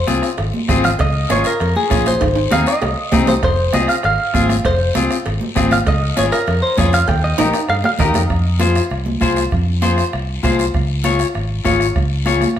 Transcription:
0.07 C2 C4 F4 G#4, bombo rim, high conga, short guiro
0.23 bombo rim, short guiro
0.38 G#1, bombo rim, cowbell, high conga, long guiro
0.54 high conga
0.68 G#1 C4 F4 G#4, bombo low, bombo rim, high conga, low conga, low timbale, short guiro
0.84 F5, bombo rim, low conga, short guiro
0.99 C#2 D#5, bombo low, bombo rim, cowbell, high conga, long guiro
1.30 G#1 C#4 F4 G#4 C#5, bombo rim, high conga, short guiro
1.44 A#4, bombo rim, short guiro
1.60 F2, bombo rim, cowbell, high conga, long guiro
1.76 G#4, high conga
1.90 A#1 C#4 F4 G#4, bombo low, bombo rim, high conga, short guiro
2.06 C5, bombo rim, high conga, short guiro
2.21 G#1, bombo low, bombo rim, cowbell, high conga, high timbale, long guiro
2.36 high timbale
2.51 D#2 C4 D#4 G#4 F5, bombo rim, high conga, low timbale, short guiro
2.66 D#5, bombo rim, short guiro
2.82 C2, bombo rim, cowbell, high conga, low timbale, long guiro
3.12 C2 C4 D#4 G#4, bombo low, bombo rim, high conga, low conga, low timbale, short guiro
3.27 C5, bombo rim, low conga, low timbale, short guiro
3.43 F1 C5, bombo low, bombo rim, cowbell, high conga, long guiro
3.73 C2 C4 F4 G#4 D#5, bombo rim, high conga, short guiro
3.88 F5, bombo rim, short guiro
4.03 G#1 F5, bombo rim, cowbell, high conga, long guiro
4.34 G#1 C4 F4 G#4, bombo low, bombo rim, high conga, short guiro
4.49 bombo rim, high conga, short guiro
4.65 F1 C5, bombo low, bombo rim, cowbell, high conga, long guiro
4.95 C2 C4 F4 G#4, bombo rim, high conga, short guiro
5.11 bombo rim, short guiro
5.25 G#1, bombo rim, cowbell, high conga, long guiro
5.41 high conga
5.56 G#1 C4 F4 G#4, bombo low, bombo rim, high conga, low conga, low timbale, short guiro
5.71 F5, bombo rim, high conga, low conga, short guiro
5.86 C#2 D#5, bombo low, bombo rim, cowbell, high conga, long guiro
6.16 G#1 C#4 F4 G#4 C#5, bombo rim, high conga, short guiro
6.32 A#4, bombo rim, short guiro
6.47 F2, bombo rim, cowbell, high conga, long guiro
6.62 C5
6.77 F2 C#4 F4 G#4 C#5, bombo low, bombo rim, high conga, short guiro
6.93 F5, bombo rim, short guiro
7.08 D#2 G5, bombo low, bombo rim, cowbell, high conga, long guiro
7.24 D#5
7.38 A#1 D#4 G4 A#4, bombo rim, high conga, high timbale, short guiro
7.53 bombo rim, high timbale, short guiro
7.69 G2 F5, bombo rim, cowbell, high conga, long guiro
7.84 F5, high conga, low timbale
7.99 D#2 D#4 G4 A#4 D#5, bombo low, bombo rim, high conga, low conga, low timbale, short guiro
8.14 F2, bombo rim, high conga, low conga, low timbale, short guiro
8.29 F2, bombo low, bombo rim, high conga, long guiro
8.59 F4 G#4 C5, bombo rim, high conga, short guiro
8.75 bombo rim, short guiro
8.90 C2, bombo rim, high conga, long guiro
9.06 high conga
9.21 C2 F4 G#4 C5, bombo low, bombo rim, high conga, short guiro
9.36 bombo rim, high conga, short guiro
9.51 F2, bombo low, bombo rim, high conga, long guiro
9.82 F4 G#4 C5, bombo rim, high conga, short guiro
9.98 bombo rim, short guiro
10.13 C2, bombo rim, high conga, long guiro
10.43 C2 F4 G#4 C5, bombo low, bombo rim, high conga, short guiro
10.59 bombo rim, short guiro
10.74 C#2, bombo low, bombo rim, high conga, long guiro
11.04 F4 G#4 C#5, bombo rim, high conga, short guiro
11.19 bombo rim, short guiro
11.34 G#1, bombo rim, high conga, long guiro
11.65 G#1 F4 G#4 C#5, bombo low, bombo rim, high conga, short guiro
11.80 bombo rim, short guiro
11.96 C#2, bombo low, bombo rim, high conga, long guiro
12.26 F4 G#4 C#5, bombo rim, high conga, short guiro
12.41 bombo rim, high conga, short guiro

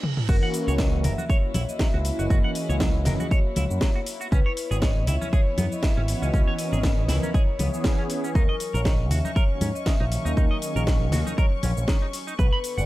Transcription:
Already playing: reverse cymbal
0.03 mid tom
0.17 mid tom
0.28 F#1 E3 A#3 C#4 E4 F#4 A#4, kick, crash, shaker
0.43 F#5
0.54 open hi-hat, shaker
0.68 C#2 C#5, shaker
0.78 F#3 D#5, kick, snare, shaker
1.04 F#1 A#4 E5, open hi-hat, low conga, shaker
1.18 F#4, high conga, shaker
1.30 C#5, kick, shaker
1.43 E3 A#3 C#4 F#4
1.54 A#1 E4, open hi-hat, high conga, shaker
1.69 D#5, shaker
1.79 F#3 E5, kick, snare, shaker
1.94 C#2 F#4
2.05 E3 A#3 C#4 E4, open hi-hat, shaker
2.19 F#1 F#4 D#5, shaker
2.30 F#1 F#4, kick, shaker
2.44 F#5
2.55 E3 A#3 C#4 G#4 D#5, open hi-hat, shaker
2.69 C#2 C#5, shaker
2.80 E3 F#3 A#3 C#4 F#4, kick, snare, shaker
3.05 F#1 E3 A#3 C#4 G#4 A#4, snare, open hi-hat, low conga, shaker
3.20 F#4, high conga, shaker
3.31 C#5, kick, shaker
3.56 C#2 E4, open hi-hat, high conga, shaker
3.70 F#2, shaker
3.81 F#3, kick, snare, shaker
3.95 F#4
4.06 open hi-hat, shaker
4.21 F#4, shaker
4.32 C#2 B3 C#4 E4 B4 C#5, kick, shaker
4.46 C#5
4.57 open hi-hat, shaker
4.71 G#1 G#4 C#5, shaker
4.82 C#3 D#5, kick, snare, shaker
5.07 C#2 E4 E5, open hi-hat, low conga, shaker
5.21 C#4, high conga, shaker
5.33 G#4 C#5, kick, shaker
5.46 E3 B3 C#4 G#4
5.58 F#2 B3, open hi-hat, high conga, shaker
5.72 D#5, shaker
5.83 C#3 E5, kick, snare, shaker
5.97 G#1 C#4
6.08 E3 B3 C#4 F#4, open hi-hat, shaker
6.22 C#2 C#4 D#5, shaker
6.34 C#2 C#4, kick, shaker
6.48 C#5
6.58 E3 B3 C#4 A#4 D#5, open hi-hat, shaker
6.73 G#1 G#4, shaker
6.83 C#3 E3 B3 C#4 G#4, kick, snare, shaker
7.09 C#2 E3 B3 C#4 E4 A#4, snare, open hi-hat, low conga, shaker
7.23 C#4, high conga, shaker
7.34 G#4 C#5, kick, shaker
7.59 C#2 E3 B3 C#4 G#4, open hi-hat, high conga, shaker
7.74 shaker
7.84 C#3, kick, snare, shaker
7.99 C#4
8.10 open hi-hat, shaker
8.24 C#4, shaker
8.35 D#2 F#3 C#4 D#4 A#4 C#6, kick, shaker
8.49 D#5
8.60 open hi-hat, shaker
8.74 A#1 A#4 C#5, shaker
8.85 D#3 D#5, kick, snare, shaker
9.11 D#2 F#4 E5, open hi-hat, low conga, shaker
9.24 D#4, high conga, shaker
9.36 A#4 C#5, kick, shaker
9.49 D#3 A#3 C#4 F#4
9.61 G#2 C#4, open hi-hat, high conga, shaker
9.75 D#5, shaker
9.86 D#3 E5, kick, snare, shaker
10.00 A#1 D#4
10.11 D#3 A#3 C#4 D#4, open hi-hat, shaker
10.25 D#2 D#4 D#5, shaker
10.37 D#2 D#4, kick, shaker
10.51 D#5
10.62 D#3 A#3 C#4 G#4 D#5, open hi-hat, shaker
10.76 A#1 A#4, shaker
10.87 D#3 A#3 C#4 F#4, kick, snare, shaker
11.12 D#2 D#3 A#3 C#4 F#4 G#4, snare, open hi-hat, low conga, shaker
11.27 D#4, high conga, shaker
11.38 A#4 C#5, kick, shaker
11.63 A#1 C#4, open hi-hat, high conga, shaker
11.77 A#1, shaker
11.88 D#3, kick, snare, shaker
12.02 D#4
12.13 open hi-hat, shaker
12.27 D#4, shaker
12.39 B1 D3 B3 B4, kick, shaker
12.53 B5
12.64 open hi-hat, shaker
12.78 F#1 D5 F#5, shaker

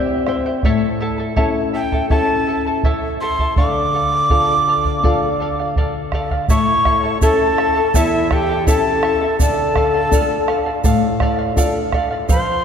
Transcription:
Already playing: C3 E4 G4 C5 D5 E5 G5
0.27 E4 C5 E5 G5, bombo rim
0.46 E4 C5 G5
0.63 A2 E4 A4 C#5 E5 A5, bombo low
1.00 E4 A4 E5 A5
1.18 E4 A4 A5
1.36 C#4 E4 A4 C#5 E5 A5, bombo low
1.74 E4 A4 E5 G5 A5
1.92 E4 A4 A5, bombo low
2.10 C#4 E4 A4 C#5 E5 A5, bombo low
2.47 E4 A4 E5 A5
2.66 E4 A4 A5
2.83 E4 A4 C#5 E5 A5, bombo low
3.21 E4 A4 E5 A5 C6
3.39 E4 A4 A5, bombo low
3.56 D3 A4 D5 F5 D6, bombo low
3.94 A4 D5 F5
4.14 D5 F5
4.30 D4 F4 A4 D5 F5, bombo low
4.68 A4 D5 F5
4.85 D5 F5, bombo low
5.03 D4 F4 A4 D5 F5, bombo low
5.40 A4 D5 F5
5.59 D5 F5
5.76 A4 D5 F5, bombo low
6.12 A4 D5 F5, bombo rim, bombo low
6.30 D5 F5, bombo low
6.48 A2 E4 A4 C#5 E5 A5 C#6, bombo low, shaker
6.85 E4 A4 E5 A5, bombo rim, bombo low
7.03 E4 A4 A5
7.21 C#4 E4 A4 C#5 E5 A5, bombo low, shaker
7.58 E4 A4 E5 A5, bombo rim
7.76 E4 A4 A5
7.94 E2 E4 A4 C#5 E5 A5, bombo low, shaker
8.31 E4 G4 A4 E5 G5 A5, bombo rim, bombo low
8.49 E4 A4 A5
8.67 C#4 E4 A4 C#5 E5 A5, bombo low, shaker
9.03 E4 A4 E5 A5, bombo rim
9.21 E4 A4 A5
9.39 D3 A4 D5 F5 A5, bombo low, shaker
9.76 A4 D5 F5, bombo rim, bombo low
9.94 D5 F5
10.11 D4 F4 A4 D5 F5, bombo low, shaker
10.48 A4 D5 F5, bombo rim
10.66 D5 F5
10.84 A2 A4 D5 F5, bombo low, shaker
11.20 A4 D5 F5, bombo rim, bombo low
11.39 D5 F5
11.56 D4 F4 A4 D5 F5, bombo low, shaker
11.92 A4 D5 F5, bombo rim, bombo low
12.10 D5 F5
12.29 F3 A4 C5 F5 C6, bombo low, shaker

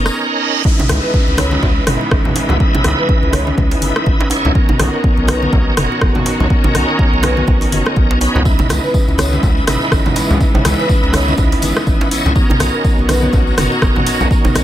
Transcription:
Already playing: F#1 D#3 B3 C#4 D#4 G#4 A#4, reverse cymbal
0.06 cross-stick, tambourine
0.65 C#3 E3 G#3 B3 C#4 D#4 E4 B4, kick, downlifter
0.79 mid tom, djembe slap, djembe tone, djembe bass
0.89 C#2, cross-stick, open hi-hat, muted conga, high conga
1.03 B4
1.13 C#4, kick
1.28 C#2 C#4, muted conga
1.38 C#5, cross-stick, open hi-hat, high conga, djembe bass
1.51 C#4, high conga
1.63 C#2, kick, muted conga, low conga
1.87 G#1 D#4 E4 B4, cross-stick, mid tom, open hi-hat, djembe tone, high conga
2.01 muted conga
2.11 G#1 C#4, kick, cross-stick, high conga
2.25 C#4, mid tom, djembe tone, low conga
2.36 open hi-hat, djembe slap
2.49 C#2, muted conga, low conga
2.60 C#4 D#4 E4 B4, kick
2.74 mid tom, djembe slap, djembe tone, djembe bass
2.84 C#2, cross-stick, open hi-hat, muted conga, high conga
2.98 B4
3.09 C#4, kick
3.23 C#2 C#4, muted conga
3.33 C#5, cross-stick, open hi-hat, high conga, djembe bass
3.47 C#4, high conga
3.57 C#2 C#4 D#4 E4 B4, kick, muted conga, djembe tone, high conga
3.71 open hi-hat, djembe slap
3.82 G#1, open hi-hat, high conga
3.96 cross-stick, muted conga
4.06 G#1 C#4, kick, djembe tone
4.21 C#4, djembe slap
4.30 D#4 E4 C#5, open hi-hat, djembe tone
4.45 C#2, muted conga, low conga
4.55 D#3 B3 C#4 D#4 F#4 A#4, kick
4.69 mid tom, djembe slap, djembe tone, djembe bass
4.79 B1, cross-stick, open hi-hat, muted conga, high conga
4.94 A#4
5.04 B3, kick
5.17 B1 B3, muted conga
5.27 B4, cross-stick, open hi-hat, high conga, djembe bass
5.42 B3, high conga
5.53 B1 B3, kick, muted conga, low conga
5.77 F#1 C#4 D#4 A#4, cross-stick, mid tom, open hi-hat, djembe tone, high conga
5.92 muted conga
6.01 F#1 B3, kick, cross-stick, high conga
6.15 B3, mid tom, djembe tone, low conga
6.26 open hi-hat, djembe slap
6.40 B1, muted conga, low conga
6.50 B3 C#4 D#4 A#4, kick
6.64 mid tom, djembe slap, djembe tone, djembe bass
6.75 B1, cross-stick, open hi-hat, muted conga, high conga
6.88 A#4
6.99 B3, kick
7.13 B1 B3, muted conga
7.23 B4, cross-stick, open hi-hat, djembe slap, high conga, djembe bass
7.37 B3, high conga
7.47 B1 B3 C#4 D#4 A#4, kick, muted conga, high conga, djembe tone
7.61 open hi-hat, djembe slap
7.72 F#1, open hi-hat, high conga
7.86 cross-stick, muted conga
7.96 B1 B3, kick, djembe tone
8.11 B3, djembe slap
8.21 C#4 D#4 B4, open hi-hat, djembe tone
8.35 C#2, muted conga, low conga
8.45 C#3 E3 G#3 B3 C#4 D#4 E4 B4, kick, tambourine
8.59 mid tom, tambourine, djembe slap, djembe tone, djembe bass
8.69 C#2, cross-stick, open hi-hat, tambourine, muted conga, high conga
8.84 B4, tambourine
8.94 C#4, kick, tambourine
9.08 C#2 C#4, tambourine, muted conga
9.18 C#5, cross-stick, open hi-hat, tambourine, high conga, djembe bass
9.33 C#4, tambourine, high conga
9.43 C#2, kick, tambourine, muted conga, low conga
9.57 tambourine
9.67 G#1 D#4 E4 B4, cross-stick, mid tom, open hi-hat, tambourine, high conga, djembe tone
9.81 tambourine, muted conga
9.92 G#1 C#4, kick, cross-stick, tambourine, high conga
10.06 C#4, mid tom, tambourine, djembe tone, low conga
10.16 open hi-hat, tambourine, djembe slap
10.30 C#2, tambourine, muted conga, low conga
10.40 C#4 D#4 E4 B4, kick, tambourine
10.55 mid tom, tambourine, djembe slap, djembe tone, djembe bass
10.65 C#2, cross-stick, open hi-hat, tambourine, muted conga, high conga
10.79 B4, tambourine
10.89 C#4, kick, tambourine
11.03 C#2 C#4, tambourine, muted conga
11.13 C#5, cross-stick, open hi-hat, tambourine, high conga, djembe bass
11.28 C#4, tambourine, high conga
11.38 C#2 D#4 E4 B4, kick, tambourine, muted conga, high conga, djembe tone
11.52 open hi-hat, tambourine, djembe slap
11.62 G#1, open hi-hat, tambourine, high conga
11.77 cross-stick, tambourine, muted conga
11.87 G#1 C#4, kick, tambourine, djembe tone
12.01 C#4, tambourine, djembe slap
12.11 D#4 E4 C#5, open hi-hat, tambourine, djembe tone
12.25 C#2, tambourine, muted conga, low conga
12.36 D#3 B3 C#4 D#4 F#4 A#4, kick, tambourine
12.49 mid tom, tambourine, djembe slap, djembe tone, djembe bass
12.60 B1, cross-stick, open hi-hat, tambourine, muted conga, high conga
12.74 A#4, tambourine
12.84 B3, kick, tambourine
12.98 B1 B3, tambourine, muted conga
13.09 B4, cross-stick, open hi-hat, tambourine, high conga, djembe bass
13.22 B3, tambourine, high conga
13.33 B1, kick, tambourine, muted conga, low conga
13.47 tambourine
13.58 F#1 C#4 D#4 A#4, cross-stick, mid tom, open hi-hat, tambourine, djembe tone, high conga
13.72 tambourine, muted conga
13.82 F#1, kick, cross-stick, tambourine, high conga
13.96 B3, mid tom, tambourine, djembe tone, low conga
14.06 open hi-hat, tambourine, djembe slap
14.21 B1, tambourine, muted conga, low conga
14.31 C#4 D#4 A#4, kick, tambourine
14.45 mid tom, tambourine, djembe slap, djembe tone, djembe bass
14.55 B1, cross-stick, open hi-hat, tambourine, muted conga, high conga

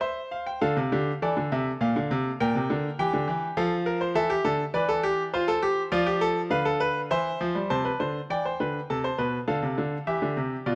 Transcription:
0.01 C5 E5
0.31 F5
0.46 G5
0.61 D3 A4 F5
0.77 C3
0.92 D3 G4
1.22 E3 A4 D5
1.37 D3
1.52 C3 E5
1.81 A#2 F5
1.96 D3
2.11 C3
2.40 A#2 A#4 G5
2.55 C3
2.70 D3
2.99 E3 G4 G5
3.13 D3
3.28 E3
3.57 F3 A4 F5
3.86 A#4
4.01 C5
4.15 E3 A4 E5
4.30 G4
4.45 D3 A4
4.74 E3 B4 D5
4.89 A4
5.03 G4
5.33 F4 C5
5.48 A4
5.63 G4
5.92 F3 F4 D5
6.06 G4
6.21 A4
6.50 D3 B4 F5
6.65 A4
6.80 B4
7.11 E3 C5 E5
7.41 F3
7.55 G3
7.70 C3 C5 A5
7.85 B4
8.00 D3 C5
8.30 E3 D5 G5
8.45 C5
8.60 D3 B4
8.90 C3 A4 A5
9.04 C5
9.18 B2 B4
9.48 D3 A4 F5
9.62 C3
9.78 D3
10.07 E3 G4 E5
10.22 D3
10.37 C3
10.66 B2 F4 D5

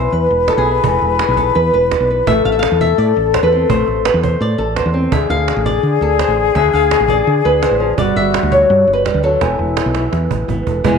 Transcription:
Already playing: E3 B4 C5 E5
0.12 E2 B4
0.31 E1
0.48 A4, cajon bass, cajon slap
0.57 B1 G#4
0.66 E4, cajon slap
0.84 E1 E3 A4, cajon bass
1.02 E1
1.19 G#4, cajon slap
1.28 B1
1.37 A4, cajon bass
1.55 E2 B4
1.73 E1 B4, cajon slap
1.91 D5, cajon bass, cajon slap
2.00 B1
2.09 B4, cajon slap
2.27 A1 A3 A4 E5, cajon bass
2.45 A1 F5
2.52 E5
2.59 F5, cajon slap
2.72 E2
2.81 E5, cajon bass
2.98 A2 D5
3.16 A1, cajon slap
3.34 C5, cajon bass, cajon slap
3.43 E2 B4
3.52 C4
3.69 A1 A3 C5, cajon bass
3.87 A1
4.05 B4, cajon slap
4.14 E2
4.23 C5, cajon bass
4.41 A2 D5
4.58 A1 A4
4.76 B3 C5, cajon bass, cajon slap
4.86 E2
4.94 C4, cajon slap
5.12 D2 D3 G#4 E5, cajon bass
5.29 D2 F5
5.48 cajon slap
5.56 A1
5.66 D5, cajon bass
5.83 D3
6.01 D2 A4, cajon slap
6.19 C5, cajon bass, cajon slap
6.28 A1
6.55 D2 D3 E5, cajon bass, cajon slap
6.73 D2 F5
6.91 cajon slap
7.00 A1
7.08 D5, cajon bass
7.27 D3
7.45 D2 B4, cajon slap
7.62 E3 C5, cajon slap
7.71 A1
7.80 F3
7.98 G1 G3 F#4 D5, cajon bass
8.16 G1 E5
8.34 cajon slap
8.43 D2
8.52 C#5, cajon bass
8.70 G2
8.87 G1, cajon slap
8.93 B4
9.05 G3, cajon bass, cajon slap
9.14 D2
9.23 F#3 A4, cajon slap
9.41 E1 E3 B3 E4, cajon bass, cajon slap
9.59 E1
9.77 cajon slap
9.86 B1
9.95 B3, cajon slap
10.13 E2, cajon slap
10.31 A1, cajon bass
10.48 G#1 B3, cajon bass
10.67 E1 A4, cajon bass
10.84 E1 E3 G#3 B3 E4 G#4, cajon bass

